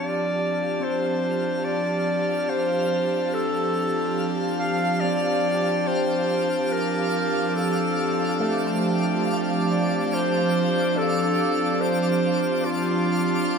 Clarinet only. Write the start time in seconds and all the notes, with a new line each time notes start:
Already playing: D5
0.84 C5
1.65 D5
2.50 C5
3.34 A4
4.58 F5
5.00 D5
5.88 C5
6.72 A#4
7.55 A4
9.71 D5
10.15 C5
10.98 A4
11.81 C5
12.65 F4